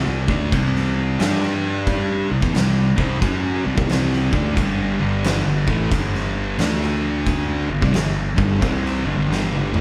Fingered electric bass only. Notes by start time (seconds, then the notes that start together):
0.07 C2
0.28 D2
0.52 C2
1.20 G2
2.31 C2
2.42 E2
2.55 C2
2.97 C2
3.22 F#2
3.66 C2
3.77 C2
3.90 C2
4.32 D2
4.57 G1
5.02 G1
5.45 G1
5.67 A1
5.92 G1
6.59 D2
7.70 G1
7.83 C2
7.94 G1
8.38 G1
8.62 C2
9.05 G1
9.16 G1
9.29 G1
9.72 A1